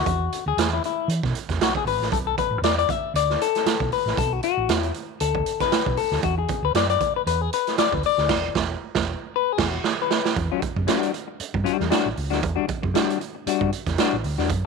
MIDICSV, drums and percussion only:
0, 0, Header, 1, 2, 480
1, 0, Start_track
1, 0, Tempo, 515907
1, 51, Time_signature, 4, 2, 24, 8
1, 13641, End_track
2, 0, Start_track
2, 0, Title_t, "Drums"
2, 59, Note_on_c, 9, 36, 115
2, 60, Note_on_c, 9, 42, 89
2, 152, Note_off_c, 9, 36, 0
2, 153, Note_off_c, 9, 42, 0
2, 302, Note_on_c, 9, 42, 72
2, 395, Note_off_c, 9, 42, 0
2, 539, Note_on_c, 9, 42, 93
2, 546, Note_on_c, 9, 38, 108
2, 632, Note_off_c, 9, 42, 0
2, 639, Note_off_c, 9, 38, 0
2, 779, Note_on_c, 9, 42, 64
2, 872, Note_off_c, 9, 42, 0
2, 1018, Note_on_c, 9, 42, 90
2, 1111, Note_off_c, 9, 42, 0
2, 1148, Note_on_c, 9, 36, 99
2, 1153, Note_on_c, 9, 38, 36
2, 1242, Note_off_c, 9, 36, 0
2, 1246, Note_off_c, 9, 38, 0
2, 1256, Note_on_c, 9, 42, 70
2, 1349, Note_off_c, 9, 42, 0
2, 1386, Note_on_c, 9, 36, 71
2, 1389, Note_on_c, 9, 42, 42
2, 1393, Note_on_c, 9, 38, 30
2, 1480, Note_off_c, 9, 36, 0
2, 1482, Note_off_c, 9, 42, 0
2, 1486, Note_off_c, 9, 38, 0
2, 1499, Note_on_c, 9, 42, 80
2, 1501, Note_on_c, 9, 38, 110
2, 1592, Note_off_c, 9, 42, 0
2, 1594, Note_off_c, 9, 38, 0
2, 1628, Note_on_c, 9, 36, 91
2, 1721, Note_off_c, 9, 36, 0
2, 1739, Note_on_c, 9, 46, 68
2, 1832, Note_off_c, 9, 46, 0
2, 1879, Note_on_c, 9, 38, 42
2, 1972, Note_off_c, 9, 38, 0
2, 1973, Note_on_c, 9, 36, 118
2, 1983, Note_on_c, 9, 42, 86
2, 2066, Note_off_c, 9, 36, 0
2, 2076, Note_off_c, 9, 42, 0
2, 2213, Note_on_c, 9, 36, 99
2, 2214, Note_on_c, 9, 42, 71
2, 2306, Note_off_c, 9, 36, 0
2, 2307, Note_off_c, 9, 42, 0
2, 2450, Note_on_c, 9, 42, 93
2, 2457, Note_on_c, 9, 38, 101
2, 2543, Note_off_c, 9, 42, 0
2, 2550, Note_off_c, 9, 38, 0
2, 2593, Note_on_c, 9, 42, 58
2, 2687, Note_off_c, 9, 42, 0
2, 2688, Note_on_c, 9, 36, 100
2, 2694, Note_on_c, 9, 42, 66
2, 2781, Note_off_c, 9, 36, 0
2, 2787, Note_off_c, 9, 42, 0
2, 2934, Note_on_c, 9, 42, 96
2, 3027, Note_off_c, 9, 42, 0
2, 3070, Note_on_c, 9, 38, 35
2, 3163, Note_off_c, 9, 38, 0
2, 3176, Note_on_c, 9, 42, 67
2, 3269, Note_off_c, 9, 42, 0
2, 3302, Note_on_c, 9, 42, 46
2, 3306, Note_on_c, 9, 38, 30
2, 3395, Note_off_c, 9, 42, 0
2, 3399, Note_off_c, 9, 38, 0
2, 3407, Note_on_c, 9, 42, 92
2, 3409, Note_on_c, 9, 38, 107
2, 3501, Note_off_c, 9, 42, 0
2, 3502, Note_off_c, 9, 38, 0
2, 3538, Note_on_c, 9, 36, 99
2, 3632, Note_off_c, 9, 36, 0
2, 3646, Note_on_c, 9, 46, 59
2, 3739, Note_off_c, 9, 46, 0
2, 3787, Note_on_c, 9, 38, 41
2, 3880, Note_off_c, 9, 38, 0
2, 3884, Note_on_c, 9, 36, 114
2, 3890, Note_on_c, 9, 42, 97
2, 3977, Note_off_c, 9, 36, 0
2, 3983, Note_off_c, 9, 42, 0
2, 4119, Note_on_c, 9, 42, 75
2, 4212, Note_off_c, 9, 42, 0
2, 4363, Note_on_c, 9, 42, 101
2, 4369, Note_on_c, 9, 38, 108
2, 4456, Note_off_c, 9, 42, 0
2, 4462, Note_off_c, 9, 38, 0
2, 4494, Note_on_c, 9, 42, 55
2, 4587, Note_off_c, 9, 42, 0
2, 4599, Note_on_c, 9, 42, 67
2, 4692, Note_off_c, 9, 42, 0
2, 4839, Note_on_c, 9, 42, 90
2, 4932, Note_off_c, 9, 42, 0
2, 4975, Note_on_c, 9, 36, 99
2, 5068, Note_off_c, 9, 36, 0
2, 5081, Note_on_c, 9, 42, 69
2, 5174, Note_off_c, 9, 42, 0
2, 5211, Note_on_c, 9, 42, 43
2, 5215, Note_on_c, 9, 36, 79
2, 5216, Note_on_c, 9, 38, 34
2, 5304, Note_off_c, 9, 42, 0
2, 5308, Note_off_c, 9, 36, 0
2, 5309, Note_off_c, 9, 38, 0
2, 5322, Note_on_c, 9, 42, 90
2, 5324, Note_on_c, 9, 38, 108
2, 5415, Note_off_c, 9, 42, 0
2, 5417, Note_off_c, 9, 38, 0
2, 5456, Note_on_c, 9, 36, 102
2, 5549, Note_off_c, 9, 36, 0
2, 5556, Note_on_c, 9, 46, 66
2, 5649, Note_off_c, 9, 46, 0
2, 5691, Note_on_c, 9, 38, 36
2, 5784, Note_off_c, 9, 38, 0
2, 5793, Note_on_c, 9, 42, 83
2, 5798, Note_on_c, 9, 36, 115
2, 5886, Note_off_c, 9, 42, 0
2, 5891, Note_off_c, 9, 36, 0
2, 6032, Note_on_c, 9, 42, 70
2, 6041, Note_on_c, 9, 36, 98
2, 6125, Note_off_c, 9, 42, 0
2, 6134, Note_off_c, 9, 36, 0
2, 6276, Note_on_c, 9, 42, 93
2, 6283, Note_on_c, 9, 38, 107
2, 6369, Note_off_c, 9, 42, 0
2, 6376, Note_off_c, 9, 38, 0
2, 6414, Note_on_c, 9, 42, 62
2, 6507, Note_off_c, 9, 42, 0
2, 6518, Note_on_c, 9, 42, 67
2, 6519, Note_on_c, 9, 36, 97
2, 6611, Note_off_c, 9, 42, 0
2, 6612, Note_off_c, 9, 36, 0
2, 6763, Note_on_c, 9, 42, 84
2, 6856, Note_off_c, 9, 42, 0
2, 7003, Note_on_c, 9, 42, 79
2, 7096, Note_off_c, 9, 42, 0
2, 7135, Note_on_c, 9, 42, 43
2, 7140, Note_on_c, 9, 38, 34
2, 7228, Note_off_c, 9, 42, 0
2, 7233, Note_off_c, 9, 38, 0
2, 7238, Note_on_c, 9, 42, 93
2, 7240, Note_on_c, 9, 38, 101
2, 7331, Note_off_c, 9, 42, 0
2, 7333, Note_off_c, 9, 38, 0
2, 7373, Note_on_c, 9, 36, 105
2, 7466, Note_off_c, 9, 36, 0
2, 7471, Note_on_c, 9, 46, 61
2, 7564, Note_off_c, 9, 46, 0
2, 7607, Note_on_c, 9, 38, 38
2, 7700, Note_off_c, 9, 38, 0
2, 7713, Note_on_c, 9, 38, 102
2, 7713, Note_on_c, 9, 49, 86
2, 7716, Note_on_c, 9, 36, 116
2, 7806, Note_off_c, 9, 38, 0
2, 7806, Note_off_c, 9, 49, 0
2, 7809, Note_off_c, 9, 36, 0
2, 7957, Note_on_c, 9, 36, 117
2, 7957, Note_on_c, 9, 38, 121
2, 8050, Note_off_c, 9, 36, 0
2, 8050, Note_off_c, 9, 38, 0
2, 8325, Note_on_c, 9, 38, 114
2, 8331, Note_on_c, 9, 36, 117
2, 8418, Note_off_c, 9, 38, 0
2, 8424, Note_off_c, 9, 36, 0
2, 8915, Note_on_c, 9, 38, 119
2, 8915, Note_on_c, 9, 49, 98
2, 8918, Note_on_c, 9, 36, 124
2, 9008, Note_off_c, 9, 38, 0
2, 9008, Note_off_c, 9, 49, 0
2, 9011, Note_off_c, 9, 36, 0
2, 9156, Note_on_c, 9, 38, 93
2, 9249, Note_off_c, 9, 38, 0
2, 9402, Note_on_c, 9, 38, 102
2, 9495, Note_off_c, 9, 38, 0
2, 9538, Note_on_c, 9, 38, 105
2, 9631, Note_off_c, 9, 38, 0
2, 9641, Note_on_c, 9, 42, 86
2, 9643, Note_on_c, 9, 36, 122
2, 9734, Note_off_c, 9, 42, 0
2, 9736, Note_off_c, 9, 36, 0
2, 9881, Note_on_c, 9, 42, 65
2, 9884, Note_on_c, 9, 36, 112
2, 9974, Note_off_c, 9, 42, 0
2, 9977, Note_off_c, 9, 36, 0
2, 10015, Note_on_c, 9, 36, 77
2, 10109, Note_off_c, 9, 36, 0
2, 10119, Note_on_c, 9, 42, 98
2, 10125, Note_on_c, 9, 38, 103
2, 10212, Note_off_c, 9, 42, 0
2, 10218, Note_off_c, 9, 38, 0
2, 10260, Note_on_c, 9, 42, 66
2, 10353, Note_off_c, 9, 42, 0
2, 10364, Note_on_c, 9, 42, 70
2, 10457, Note_off_c, 9, 42, 0
2, 10604, Note_on_c, 9, 42, 80
2, 10697, Note_off_c, 9, 42, 0
2, 10738, Note_on_c, 9, 36, 100
2, 10831, Note_off_c, 9, 36, 0
2, 10847, Note_on_c, 9, 42, 70
2, 10940, Note_off_c, 9, 42, 0
2, 10978, Note_on_c, 9, 38, 31
2, 11071, Note_off_c, 9, 38, 0
2, 11085, Note_on_c, 9, 42, 82
2, 11087, Note_on_c, 9, 38, 114
2, 11178, Note_off_c, 9, 42, 0
2, 11180, Note_off_c, 9, 38, 0
2, 11325, Note_on_c, 9, 46, 61
2, 11418, Note_off_c, 9, 46, 0
2, 11462, Note_on_c, 9, 38, 39
2, 11555, Note_off_c, 9, 38, 0
2, 11565, Note_on_c, 9, 42, 87
2, 11566, Note_on_c, 9, 36, 117
2, 11658, Note_off_c, 9, 42, 0
2, 11659, Note_off_c, 9, 36, 0
2, 11801, Note_on_c, 9, 42, 68
2, 11807, Note_on_c, 9, 36, 107
2, 11894, Note_off_c, 9, 42, 0
2, 11900, Note_off_c, 9, 36, 0
2, 11940, Note_on_c, 9, 36, 87
2, 12033, Note_off_c, 9, 36, 0
2, 12048, Note_on_c, 9, 42, 92
2, 12054, Note_on_c, 9, 38, 107
2, 12141, Note_off_c, 9, 42, 0
2, 12147, Note_off_c, 9, 38, 0
2, 12189, Note_on_c, 9, 42, 62
2, 12282, Note_off_c, 9, 42, 0
2, 12290, Note_on_c, 9, 42, 67
2, 12383, Note_off_c, 9, 42, 0
2, 12531, Note_on_c, 9, 42, 88
2, 12624, Note_off_c, 9, 42, 0
2, 12663, Note_on_c, 9, 36, 99
2, 12756, Note_off_c, 9, 36, 0
2, 12770, Note_on_c, 9, 42, 71
2, 12863, Note_off_c, 9, 42, 0
2, 12899, Note_on_c, 9, 42, 45
2, 12900, Note_on_c, 9, 36, 87
2, 12904, Note_on_c, 9, 38, 31
2, 12992, Note_off_c, 9, 42, 0
2, 12993, Note_off_c, 9, 36, 0
2, 12997, Note_off_c, 9, 38, 0
2, 13007, Note_on_c, 9, 42, 87
2, 13009, Note_on_c, 9, 38, 114
2, 13100, Note_off_c, 9, 42, 0
2, 13102, Note_off_c, 9, 38, 0
2, 13249, Note_on_c, 9, 46, 62
2, 13342, Note_off_c, 9, 46, 0
2, 13383, Note_on_c, 9, 38, 35
2, 13476, Note_off_c, 9, 38, 0
2, 13487, Note_on_c, 9, 36, 124
2, 13488, Note_on_c, 9, 42, 97
2, 13580, Note_off_c, 9, 36, 0
2, 13581, Note_off_c, 9, 42, 0
2, 13641, End_track
0, 0, End_of_file